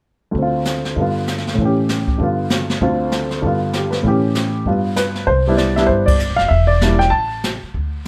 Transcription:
0.31 D2 D3, brush sweep, kick
0.38 C4 F4
0.65 snare, hi-hat pedal
0.85 snare
0.96 G2 D3 B3, brush sweep, kick
1.01 F4
1.27 snare, hi-hat pedal
1.38 snare
1.47 snare
1.54 A2 E3
1.58 C#4, brush sweep, kick
1.65 G4
1.89 snare, hi-hat pedal
2.08 kick
2.18 G2 D3 B3, brush sweep, kick
2.23 F4
2.50 snare, hi-hat pedal
2.70 snare
2.81 D2 D3 C4 F4, brush sweep, kick
3.12 snare, hi-hat pedal
3.31 snare
3.42 G2 D3 B3, brush sweep, kick
3.47 F4
3.73 G4, snare, hi-hat pedal
3.91 B4, snare
4.03 A2 E3 C#4, brush sweep, kick
4.08 G4
4.35 snare, hi-hat pedal
4.65 G2 G3 B3 F4, brush sweep, kick
4.96 B4, snare, hi-hat pedal
5.15 snare
5.27 C2 C5, brush sweep, kick
5.47 G3 B3 D4 E4
5.57 D5, snare, hi-hat pedal
5.76 G3 B3 D4 E4 E5, snare
5.87 G1 C5, brush sweep, kick
6.06 D5, kick, ride
6.19 hi-hat pedal
6.30 B1
6.36 F1 F5, snare
6.48 E1 E5, brush sweep, kick
6.67 D5
6.81 G3 A#3 D4 E4, snare, hi-hat pedal
6.99 G5, snare
7.10 A1 A5, brush sweep, kick
7.44 snare, hi-hat pedal
7.63 muted upright bass stroke
7.74 D2, brush sweep, kick

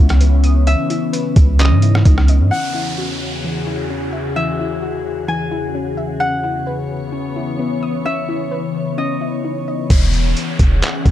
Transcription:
Already playing: C#2 C#3 E3 B3 C#4 E4 B4 F#5
0.09 cross-stick, closed hi-hat
0.21 B3, closed hi-hat
0.44 D#6, closed hi-hat
0.67 C#4 E5, closed hi-hat
0.90 E4, closed hi-hat
1.13 B4, closed hi-hat
1.36 C#2, kick, closed hi-hat
1.59 C#4 D#5, clap, closed hi-hat
1.71 G#2
1.82 E4, closed hi-hat
1.95 cross-stick
2.05 C#2 D#4, kick, closed hi-hat
2.18 cross-stick
2.28 D#5, closed hi-hat
2.40 G#2
2.51 E2 C#3 E3 F#4 G#4 F#5, downlifter
2.75 E4
2.98 F#4
3.44 E3
3.67 E4
3.90 C#4
4.13 E5
4.36 E3 E5
4.59 E4
4.82 F#4
5.28 E3 G#5
5.51 E4
5.75 C#4
5.97 E5
6.20 E3 B3 C#4 C#5 F#5
6.44 E4
6.67 B4
7.12 C#4
7.36 E4
7.59 B3
7.83 D#6
8.05 C#4 E5
8.29 E4
8.52 B4
8.98 C#4 D#5
9.21 E4
9.45 D#4
9.68 D#5
9.90 E1 E3 C#4 G#4 F#5, kick, closed hi-hat, crash, downlifter
10.13 closed hi-hat
10.37 closed hi-hat
10.59 E1, kick, closed hi-hat
10.82 clap, closed hi-hat
11.06 E1, kick, closed hi-hat

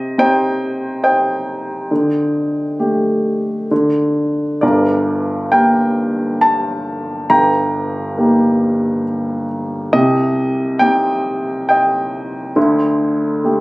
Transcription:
Already playing: C3 G4 C5 D#5
0.18 C4 D#4 G4 C5 D#5 G5
1.03 C5 D#5 G5
1.91 D3
2.79 A3 G4
3.71 D3
4.61 G1 G2 A#4 D5
5.52 A#3 G4 A#4 G5
6.41 A5
7.30 G1 G2 G5 A#5
8.17 A#3 D#4 G4
9.93 C2 C3 G4 D#5
10.79 C4 D#4 G4 G5
11.69 D#5 G5
12.56 D2 D3
13.44 A3 G4

